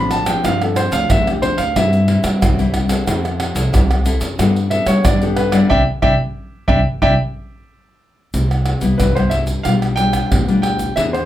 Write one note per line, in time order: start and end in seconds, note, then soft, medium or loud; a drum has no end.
0.00 0.34 A2 medium
0.00 0.41 A2 medium
0.00 0.23 F3 medium
0.00 0.23 C4 medium
0.00 0.24 D4 medium
0.00 0.12 B5 medium
0.11 0.27 A5 medium
0.11 pandeiro medium
0.11 tamborim medium
0.11 shaker medium
0.26 0.88 F3 medium
0.26 0.88 C4 medium
0.26 0.88 D4 medium
0.26 0.43 G5 medium
0.26 pandeiro medium
0.26 tamborim medium
0.26 shaker medium
0.44 0.86 G2 medium
0.44 1.07 G2 medium
0.44 0.61 F5 medium
0.44 pandeiro medium
0.44 tamborim medium
0.44 shaker medium
0.44 surdo medium
0.62 0.78 A4 medium
0.62 pandeiro soft
0.62 tamborim medium
0.62 shaker soft
0.76 0.93 C5 medium
0.76 pandeiro medium
0.76 tamborim medium
0.76 shaker medium
0.92 1.07 D2 medium
0.92 1.37 F3 medium
0.92 1.37 C4 medium
0.92 1.37 D4 medium
0.92 1.09 F5 medium
0.92 pandeiro medium
0.92 shaker medium
1.10 1.52 D2 medium
1.10 1.73 D3 medium
1.10 1.26 E5 medium
1.10 pandeiro medium
1.10 tamborim medium
1.10 shaker medium
1.10 surdo loud
1.27 1.43 G4 medium
1.27 pandeiro soft
1.27 tamborim medium
1.27 shaker soft
1.42 1.62 F3 medium
1.42 1.62 C4 medium
1.42 1.63 D4 medium
1.42 1.59 C5 medium
1.42 pandeiro medium
1.58 1.73 D2 medium
1.58 1.75 F5 medium
1.58 pandeiro medium
1.58 shaker medium
1.76 2.39 G2 medium
1.76 2.18 G2 loud
1.76 2.04 G3 medium
1.76 2.04 C4 medium
1.76 2.04 E4 medium
1.76 3.69 E5 medium
1.76 pandeiro medium
1.76 tamborim medium
1.76 shaker medium
1.76 surdo medium
1.93 pandeiro soft
1.93 shaker soft
2.08 2.39 G3 medium
2.08 2.40 C4 medium
2.08 2.40 E4 medium
2.08 pandeiro medium
2.24 2.38 G3 medium
2.24 pandeiro medium
2.24 tamborim medium
2.24 shaker medium
2.42 2.98 C2 medium
2.42 3.04 G2 medium
2.42 pandeiro medium
2.42 tamborim medium
2.42 shaker medium
2.42 surdo loud
2.58 2.86 G3 medium
2.58 2.86 C4 medium
2.58 2.86 E4 medium
2.58 pandeiro soft
2.58 shaker soft
2.74 pandeiro medium
2.74 tamborim medium
2.89 3.51 C4 medium
2.89 3.51 E4 medium
2.89 3.51 A4 medium
2.89 pandeiro medium
2.89 tamborim medium
2.89 shaker medium
3.07 3.49 F2 medium
3.07 3.70 F3 medium
3.07 pandeiro medium
3.07 tamborim medium
3.07 shaker medium
3.07 surdo medium
3.25 pandeiro soft
3.25 tamborim medium
3.25 shaker soft
3.40 pandeiro medium
3.40 tamborim medium
3.55 3.70 C2 medium
3.55 4.00 C4 medium
3.55 4.00 E4 medium
3.55 4.00 A4 medium
3.55 pandeiro medium
3.55 shaker medium
3.73 4.15 C2 medium
3.73 4.36 C3 medium
3.73 pandeiro medium
3.73 tamborim medium
3.73 shaker medium
3.73 surdo loud
3.91 pandeiro soft
3.91 tamborim medium
3.91 shaker soft
4.05 4.25 C4 medium
4.05 4.25 E4 medium
4.05 4.26 A4 medium
4.05 pandeiro medium
4.05 shaker medium
4.21 4.36 F#2 medium
4.21 pandeiro medium
4.21 shaker medium
4.39 4.81 G2 loud
4.39 5.02 G3 medium
4.39 4.67 B3 medium
4.39 4.67 D4 medium
4.39 4.67 A4 medium
4.39 pandeiro medium
4.39 tamborim medium
4.39 shaker medium
4.39 surdo medium
4.56 pandeiro soft
4.56 shaker soft
4.70 5.02 B3 medium
4.70 5.03 D4 medium
4.70 5.03 A4 medium
4.70 4.87 E5 medium
4.70 pandeiro medium
4.86 5.01 G3 medium
4.86 5.04 C#5 medium
4.86 pandeiro medium
4.86 tamborim medium
4.86 shaker medium
5.05 5.61 G2 medium
5.05 5.67 D3 medium
5.05 5.21 D5 medium
5.05 pandeiro medium
5.05 tamborim medium
5.05 shaker medium
5.05 surdo loud
5.22 5.49 B3 medium
5.22 5.50 D4 medium
5.22 5.38 G4 medium
5.22 5.50 A4 medium
5.22 pandeiro soft
5.22 shaker soft
5.36 5.53 B4 medium
5.36 pandeiro medium
5.36 tamborim medium
5.52 5.70 G3 medium
5.52 5.70 D4 medium
5.52 5.70 E4 medium
5.52 5.68 D5 medium
5.52 pandeiro medium
5.52 tamborim medium
5.52 shaker medium
5.70 5.83 C2 medium
5.70 5.81 C4 medium
5.70 5.81 D4 medium
5.70 5.81 E4 medium
5.70 5.81 D5 loud
5.70 5.80 E5 medium
5.70 5.81 G5 loud
5.70 surdo loud
6.02 6.15 C2 medium
6.02 6.13 C4 medium
6.02 6.13 D4 medium
6.02 6.13 E4 loud
6.02 6.13 D5 medium
6.02 6.13 E5 medium
6.02 6.13 G5 loud
6.02 surdo medium
6.68 6.81 C2 loud
6.68 6.79 C4 medium
6.68 6.79 D4 medium
6.68 6.79 E4 medium
6.68 6.79 D5 medium
6.68 6.79 E5 medium
6.68 6.79 G5 medium
6.68 surdo loud
7.02 7.14 C2 loud
7.02 7.13 C4 medium
7.02 7.13 D4 loud
7.02 7.13 E4 medium
7.02 7.13 D5 loud
7.02 7.13 E5 medium
7.02 7.13 G5 loud
7.02 surdo medium
8.34 8.76 C2 medium
8.34 8.97 C3 medium
8.34 pandeiro medium
8.34 shaker medium
8.34 surdo medium
8.51 pandeiro soft
8.51 tamborim medium
8.51 shaker soft
8.66 pandeiro medium
8.66 tamborim medium
8.81 8.96 C2 medium
8.81 9.10 G3 medium
8.81 9.10 B3 medium
8.81 9.11 E4 medium
8.81 pandeiro medium
8.81 shaker medium
8.81 surdo soft
8.98 9.56 C2 medium
8.98 9.62 G2 soft
8.98 9.16 B4 medium
8.98 pandeiro medium
8.98 tamborim medium
8.98 shaker medium
8.98 surdo medium
9.15 9.61 G3 medium
9.15 9.61 B3 medium
9.15 9.61 E4 medium
9.15 9.31 C5 medium
9.15 pandeiro soft
9.15 tamborim medium
9.15 shaker soft
9.15 surdo soft
9.30 9.37 E5 medium
9.30 pandeiro medium
9.30 shaker medium
9.47 pandeiro medium
9.47 shaker medium
9.63 10.22 B1 medium
9.63 10.28 B2 soft
9.63 9.93 G3 medium
9.63 9.94 D4 medium
9.63 9.94 F4 medium
9.63 9.71 F5 medium
9.63 pandeiro medium
9.63 tamborim medium
9.63 shaker medium
9.63 surdo medium
9.82 pandeiro soft
9.82 tamborim medium
9.82 shaker soft
9.96 10.42 G3 medium
9.96 10.43 D4 soft
9.96 10.43 F4 medium
9.96 10.59 G5 loud
9.96 pandeiro medium
9.96 shaker medium
10.13 pandeiro medium
10.13 tamborim medium
10.13 shaker medium
10.13 surdo soft
10.31 10.88 D2 medium
10.31 10.94 B2 soft
10.31 pandeiro medium
10.31 tamborim medium
10.31 shaker medium
10.31 surdo loud
10.48 10.92 G3 medium
10.48 10.93 D4 medium
10.48 10.93 F4 medium
10.48 pandeiro soft
10.48 shaker soft
10.62 10.94 G5 medium
10.62 pandeiro medium
10.62 tamborim medium
10.79 pandeiro soft
10.79 shaker medium
10.79 surdo soft
10.96 11.25 E2 medium
10.96 11.25 E3 medium
10.96 11.25 B3 medium
10.96 11.25 D4 medium
10.96 11.25 G#4 medium
10.96 11.01 E5 medium
10.96 pandeiro medium
10.96 shaker medium
10.96 surdo medium
11.13 11.25 C5 medium
11.13 pandeiro soft
11.13 tamborim medium
11.13 shaker soft